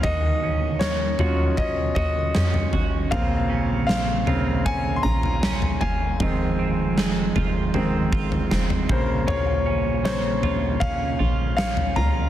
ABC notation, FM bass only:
X:1
M:4/4
L:1/8
Q:1/4=78
K:Bbm
V:1 name="FM bass" clef=bass
E,,3 E,,2 E,, F,, A,,, | B,,,4- B,,, B,,,2 G,,, | F,,,3 F,,,2 A,,, F,,, B,,,- | B,,,4- B,,, B,,,2 D,, |]